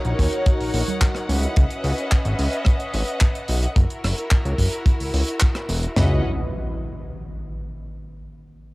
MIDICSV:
0, 0, Header, 1, 6, 480
1, 0, Start_track
1, 0, Tempo, 550459
1, 1363, Time_signature, 4, 2, 24, 8
1, 7624, End_track
2, 0, Start_track
2, 0, Title_t, "String section"
2, 0, Program_c, 0, 48
2, 0, Note_on_c, 0, 63, 80
2, 0, Note_on_c, 0, 70, 75
2, 0, Note_on_c, 0, 73, 73
2, 0, Note_on_c, 0, 78, 86
2, 1104, Note_off_c, 0, 70, 0
2, 1105, Note_off_c, 0, 63, 0
2, 1105, Note_off_c, 0, 73, 0
2, 1121, Note_on_c, 0, 61, 83
2, 1123, Note_on_c, 0, 75, 76
2, 1124, Note_on_c, 0, 71, 73
2, 1125, Note_on_c, 0, 76, 76
2, 3250, Note_off_c, 0, 78, 0
2, 3260, Note_off_c, 0, 61, 0
2, 3261, Note_off_c, 0, 75, 0
2, 3262, Note_off_c, 0, 71, 0
2, 3262, Note_off_c, 0, 76, 0
2, 3283, Note_on_c, 0, 66, 74
2, 3286, Note_on_c, 0, 64, 84
2, 3286, Note_on_c, 0, 70, 89
2, 5184, Note_off_c, 0, 66, 0
2, 5185, Note_off_c, 0, 64, 0
2, 5185, Note_off_c, 0, 70, 0
2, 5196, Note_on_c, 0, 61, 70
2, 5198, Note_on_c, 0, 75, 66
2, 5199, Note_on_c, 0, 71, 64
2, 5199, Note_on_c, 0, 76, 63
2, 5201, Note_on_c, 0, 78, 79
2, 5422, Note_off_c, 0, 61, 0
2, 5424, Note_off_c, 0, 71, 0
2, 5424, Note_off_c, 0, 75, 0
2, 5424, Note_off_c, 0, 76, 0
2, 5425, Note_off_c, 0, 78, 0
2, 7624, End_track
3, 0, Start_track
3, 0, Title_t, "Analog synth pad"
3, 0, Program_c, 1, 89
3, 40, Note_on_c, 1, 63, 79
3, 44, Note_on_c, 1, 66, 68
3, 47, Note_on_c, 1, 70, 68
3, 49, Note_on_c, 1, 73, 88
3, 372, Note_off_c, 1, 63, 0
3, 374, Note_off_c, 1, 66, 0
3, 375, Note_off_c, 1, 70, 0
3, 377, Note_off_c, 1, 73, 0
3, 397, Note_on_c, 1, 63, 96
3, 402, Note_on_c, 1, 66, 85
3, 403, Note_on_c, 1, 70, 86
3, 406, Note_on_c, 1, 73, 102
3, 495, Note_off_c, 1, 63, 0
3, 497, Note_off_c, 1, 66, 0
3, 498, Note_off_c, 1, 70, 0
3, 499, Note_off_c, 1, 73, 0
3, 876, Note_on_c, 1, 63, 97
3, 878, Note_on_c, 1, 66, 93
3, 883, Note_on_c, 1, 70, 92
3, 885, Note_on_c, 1, 73, 110
3, 974, Note_off_c, 1, 63, 0
3, 975, Note_off_c, 1, 66, 0
3, 977, Note_off_c, 1, 70, 0
3, 979, Note_off_c, 1, 73, 0
3, 1240, Note_on_c, 1, 64, 82
3, 1242, Note_on_c, 1, 66, 77
3, 1245, Note_on_c, 1, 71, 75
3, 1247, Note_on_c, 1, 78, 88
3, 1332, Note_off_c, 1, 64, 0
3, 1333, Note_off_c, 1, 66, 0
3, 1334, Note_off_c, 1, 71, 0
3, 1336, Note_off_c, 1, 78, 0
3, 5184, Note_on_c, 1, 64, 90
3, 5194, Note_on_c, 1, 66, 81
3, 5202, Note_on_c, 1, 71, 78
3, 5211, Note_on_c, 1, 75, 98
3, 5372, Note_off_c, 1, 64, 0
3, 5377, Note_off_c, 1, 66, 0
3, 5382, Note_off_c, 1, 71, 0
3, 5386, Note_off_c, 1, 75, 0
3, 7624, End_track
4, 0, Start_track
4, 0, Title_t, "Analog synth bass"
4, 0, Program_c, 2, 38
4, 44, Note_on_c, 2, 34, 93
4, 119, Note_off_c, 2, 34, 0
4, 166, Note_on_c, 2, 39, 83
4, 242, Note_off_c, 2, 39, 0
4, 525, Note_on_c, 2, 34, 42
4, 619, Note_off_c, 2, 34, 0
4, 643, Note_on_c, 2, 34, 93
4, 720, Note_off_c, 2, 34, 0
4, 1124, Note_on_c, 2, 37, 95
4, 1277, Note_off_c, 2, 37, 0
4, 1369, Note_on_c, 2, 37, 94
4, 1443, Note_off_c, 2, 37, 0
4, 1604, Note_on_c, 2, 37, 105
4, 1680, Note_off_c, 2, 37, 0
4, 1966, Note_on_c, 2, 32, 97
4, 2040, Note_off_c, 2, 32, 0
4, 2083, Note_on_c, 2, 37, 86
4, 2160, Note_off_c, 2, 37, 0
4, 2563, Note_on_c, 2, 32, 90
4, 2640, Note_off_c, 2, 32, 0
4, 3041, Note_on_c, 2, 35, 97
4, 3195, Note_off_c, 2, 35, 0
4, 3280, Note_on_c, 2, 30, 97
4, 3359, Note_off_c, 2, 30, 0
4, 3522, Note_on_c, 2, 30, 102
4, 3599, Note_off_c, 2, 30, 0
4, 3882, Note_on_c, 2, 37, 92
4, 3958, Note_off_c, 2, 37, 0
4, 3998, Note_on_c, 2, 30, 83
4, 4078, Note_off_c, 2, 30, 0
4, 4361, Note_on_c, 2, 37, 45
4, 4457, Note_off_c, 2, 37, 0
4, 4478, Note_on_c, 2, 37, 93
4, 4558, Note_off_c, 2, 37, 0
4, 4959, Note_on_c, 2, 28, 94
4, 5114, Note_off_c, 2, 28, 0
4, 5200, Note_on_c, 2, 37, 94
4, 5424, Note_off_c, 2, 37, 0
4, 7624, End_track
5, 0, Start_track
5, 0, Title_t, "Impact"
5, 0, Program_c, 3, 103
5, 5200, Note_on_c, 3, 60, 68
5, 7121, Note_off_c, 3, 60, 0
5, 7624, End_track
6, 0, Start_track
6, 0, Title_t, "Drums"
6, 41, Note_on_c, 9, 42, 49
6, 128, Note_off_c, 9, 42, 0
6, 166, Note_on_c, 9, 36, 60
6, 167, Note_on_c, 9, 46, 104
6, 253, Note_off_c, 9, 36, 0
6, 254, Note_off_c, 9, 46, 0
6, 284, Note_on_c, 9, 42, 54
6, 371, Note_off_c, 9, 42, 0
6, 401, Note_on_c, 9, 42, 91
6, 404, Note_on_c, 9, 36, 119
6, 488, Note_off_c, 9, 42, 0
6, 491, Note_off_c, 9, 36, 0
6, 527, Note_on_c, 9, 46, 73
6, 614, Note_off_c, 9, 46, 0
6, 643, Note_on_c, 9, 46, 105
6, 730, Note_off_c, 9, 46, 0
6, 768, Note_on_c, 9, 63, 86
6, 771, Note_on_c, 9, 42, 55
6, 855, Note_off_c, 9, 63, 0
6, 858, Note_off_c, 9, 42, 0
6, 883, Note_on_c, 9, 39, 127
6, 884, Note_on_c, 9, 36, 122
6, 886, Note_on_c, 9, 42, 101
6, 971, Note_off_c, 9, 36, 0
6, 971, Note_off_c, 9, 39, 0
6, 973, Note_off_c, 9, 42, 0
6, 1000, Note_on_c, 9, 37, 69
6, 1010, Note_on_c, 9, 42, 50
6, 1087, Note_off_c, 9, 37, 0
6, 1097, Note_off_c, 9, 42, 0
6, 1127, Note_on_c, 9, 63, 64
6, 1128, Note_on_c, 9, 46, 105
6, 1214, Note_off_c, 9, 63, 0
6, 1215, Note_off_c, 9, 46, 0
6, 1247, Note_on_c, 9, 42, 51
6, 1334, Note_off_c, 9, 42, 0
6, 1363, Note_on_c, 9, 42, 90
6, 1368, Note_on_c, 9, 36, 127
6, 1450, Note_off_c, 9, 42, 0
6, 1455, Note_off_c, 9, 36, 0
6, 1486, Note_on_c, 9, 42, 53
6, 1573, Note_off_c, 9, 42, 0
6, 1604, Note_on_c, 9, 46, 100
6, 1691, Note_off_c, 9, 46, 0
6, 1726, Note_on_c, 9, 42, 52
6, 1814, Note_off_c, 9, 42, 0
6, 1843, Note_on_c, 9, 42, 97
6, 1844, Note_on_c, 9, 39, 109
6, 1848, Note_on_c, 9, 36, 110
6, 1931, Note_off_c, 9, 39, 0
6, 1931, Note_off_c, 9, 42, 0
6, 1936, Note_off_c, 9, 36, 0
6, 1963, Note_on_c, 9, 42, 56
6, 2050, Note_off_c, 9, 42, 0
6, 2082, Note_on_c, 9, 46, 101
6, 2169, Note_off_c, 9, 46, 0
6, 2206, Note_on_c, 9, 42, 58
6, 2293, Note_off_c, 9, 42, 0
6, 2310, Note_on_c, 9, 37, 76
6, 2322, Note_on_c, 9, 42, 101
6, 2323, Note_on_c, 9, 36, 115
6, 2397, Note_off_c, 9, 37, 0
6, 2409, Note_off_c, 9, 42, 0
6, 2410, Note_off_c, 9, 36, 0
6, 2440, Note_on_c, 9, 42, 54
6, 2528, Note_off_c, 9, 42, 0
6, 2561, Note_on_c, 9, 46, 105
6, 2648, Note_off_c, 9, 46, 0
6, 2686, Note_on_c, 9, 42, 55
6, 2773, Note_off_c, 9, 42, 0
6, 2795, Note_on_c, 9, 39, 112
6, 2802, Note_on_c, 9, 42, 90
6, 2803, Note_on_c, 9, 36, 127
6, 2883, Note_off_c, 9, 39, 0
6, 2889, Note_off_c, 9, 42, 0
6, 2890, Note_off_c, 9, 36, 0
6, 2924, Note_on_c, 9, 42, 54
6, 3011, Note_off_c, 9, 42, 0
6, 3035, Note_on_c, 9, 46, 114
6, 3122, Note_off_c, 9, 46, 0
6, 3164, Note_on_c, 9, 42, 58
6, 3251, Note_off_c, 9, 42, 0
6, 3280, Note_on_c, 9, 36, 126
6, 3286, Note_on_c, 9, 42, 85
6, 3367, Note_off_c, 9, 36, 0
6, 3373, Note_off_c, 9, 42, 0
6, 3404, Note_on_c, 9, 42, 56
6, 3491, Note_off_c, 9, 42, 0
6, 3523, Note_on_c, 9, 46, 108
6, 3527, Note_on_c, 9, 37, 76
6, 3611, Note_off_c, 9, 46, 0
6, 3614, Note_off_c, 9, 37, 0
6, 3645, Note_on_c, 9, 42, 51
6, 3732, Note_off_c, 9, 42, 0
6, 3756, Note_on_c, 9, 39, 116
6, 3762, Note_on_c, 9, 42, 79
6, 3763, Note_on_c, 9, 36, 127
6, 3843, Note_off_c, 9, 39, 0
6, 3849, Note_off_c, 9, 42, 0
6, 3850, Note_off_c, 9, 36, 0
6, 3884, Note_on_c, 9, 42, 56
6, 3971, Note_off_c, 9, 42, 0
6, 3997, Note_on_c, 9, 36, 57
6, 3998, Note_on_c, 9, 46, 117
6, 4084, Note_off_c, 9, 36, 0
6, 4085, Note_off_c, 9, 46, 0
6, 4122, Note_on_c, 9, 42, 54
6, 4209, Note_off_c, 9, 42, 0
6, 4236, Note_on_c, 9, 36, 127
6, 4237, Note_on_c, 9, 42, 93
6, 4323, Note_off_c, 9, 36, 0
6, 4324, Note_off_c, 9, 42, 0
6, 4363, Note_on_c, 9, 46, 68
6, 4450, Note_off_c, 9, 46, 0
6, 4480, Note_on_c, 9, 46, 111
6, 4567, Note_off_c, 9, 46, 0
6, 4605, Note_on_c, 9, 42, 50
6, 4692, Note_off_c, 9, 42, 0
6, 4709, Note_on_c, 9, 39, 120
6, 4716, Note_on_c, 9, 42, 106
6, 4727, Note_on_c, 9, 36, 123
6, 4797, Note_off_c, 9, 39, 0
6, 4803, Note_off_c, 9, 42, 0
6, 4815, Note_off_c, 9, 36, 0
6, 4839, Note_on_c, 9, 42, 51
6, 4840, Note_on_c, 9, 37, 80
6, 4926, Note_off_c, 9, 42, 0
6, 4927, Note_off_c, 9, 37, 0
6, 4960, Note_on_c, 9, 46, 113
6, 5047, Note_off_c, 9, 46, 0
6, 5084, Note_on_c, 9, 42, 56
6, 5171, Note_off_c, 9, 42, 0
6, 5201, Note_on_c, 9, 38, 104
6, 5201, Note_on_c, 9, 43, 106
6, 5288, Note_off_c, 9, 38, 0
6, 5288, Note_off_c, 9, 43, 0
6, 7624, End_track
0, 0, End_of_file